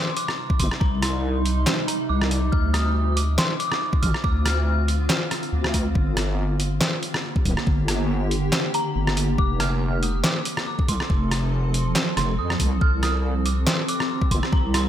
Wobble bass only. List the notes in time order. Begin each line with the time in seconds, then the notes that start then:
0.60 G1
0.81 C2
2.10 C2
2.53 D2
4.03 A1
4.24 D2
5.53 D2
5.95 G1
7.46 D1
7.67 G1
8.96 G1
9.38 F1
10.88 C2
11.10 F1
12.17 F1
12.38 F2
12.60 C2
12.81 C2
14.31 G1
14.52 C2